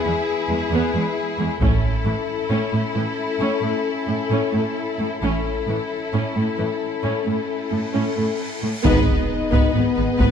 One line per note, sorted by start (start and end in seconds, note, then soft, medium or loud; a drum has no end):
0.00 1.46 B3 medium
0.00 1.57 E4 medium
0.00 1.46 G#4 medium
0.00 1.57 G#4 medium
0.05 0.13 E2 soft
0.05 0.13 G#3 soft
0.49 0.57 E2 soft
0.49 0.58 G#3 soft
0.72 0.80 E2 medium
0.72 0.93 B3 medium
0.94 1.02 E2 soft
0.94 1.03 G#3 soft
1.39 1.47 E2 soft
1.39 1.48 G#3 soft
1.61 1.82 A1 medium
1.61 1.69 A2 medium
1.61 1.82 C#4 soft
1.61 5.19 C#4 soft
1.61 5.18 E4 medium
1.61 5.19 A4 soft
1.61 5.19 A4 medium
1.61 taiko soft
2.05 2.13 A2 soft
2.05 2.14 E3 soft
2.50 2.58 A2 soft
2.50 2.71 C#4 soft
2.72 2.80 A2 soft
2.72 2.82 A3 soft
2.95 3.03 A2 soft
2.95 3.04 E3 soft
3.40 3.48 A2 soft
3.40 3.61 C#4 soft
3.62 3.70 A2 soft
3.62 3.71 A3 soft
4.08 4.16 A2 soft
4.08 4.17 A3 soft
4.31 4.39 A2 soft
4.31 4.52 C#4 soft
4.53 4.62 A2 soft
4.53 4.61 A3 soft
4.99 5.07 A2 soft
4.99 5.07 A3 soft
5.21 5.43 A1 soft
5.21 5.31 A2 soft
5.21 8.49 C#4 soft
5.21 5.43 C#4 soft
5.21 8.61 E4 soft
5.21 8.49 A4 soft
5.21 8.61 A4 soft
5.21 cymbal swell soft
5.67 5.75 A2 soft
5.67 5.76 E3 soft
6.13 6.21 A2 soft
6.13 6.34 C#4 soft
6.36 6.44 A2 soft
6.36 6.44 A3 soft
6.57 6.66 A2 soft
6.57 6.65 E3 soft
7.03 7.12 A2 soft
7.03 7.25 C#4 soft
7.25 7.35 A2 soft
7.25 7.33 A3 soft
7.70 7.80 A2 soft
7.70 7.78 A3 soft
7.93 8.03 A2 soft
7.93 8.15 C#4 soft
8.16 8.26 A2 soft
8.16 8.24 A3 soft
8.62 8.71 A2 soft
8.62 8.70 A3 soft
8.83 9.06 G#1 medium
8.83 9.04 B3 medium
8.83 10.31 B3 medium
8.83 9.71 D#4 medium
8.83 10.31 G#4 medium
8.83 10.31 B4 medium
8.83 9.06 B4 medium
8.83 10.31 D#5 medium
8.83 taiko medium
8.83 impact medium
9.05 9.15 G#1 soft
9.05 9.13 B3 soft
9.05 9.15 B4 soft
9.51 9.60 G#1 medium
9.51 9.72 B3 medium
9.51 9.73 B4 soft
9.51 taiko medium
9.73 9.83 G#1 soft
9.73 9.81 B3 soft
9.73 10.31 B3 medium
9.73 9.82 B4 soft
9.96 10.06 G#1 soft
9.96 10.04 B3 soft
9.96 10.05 B4 soft
10.18 10.28 G#1 medium
10.18 10.27 G#1 medium
10.18 10.31 B3 soft
10.18 10.31 B4 soft
10.18 taiko medium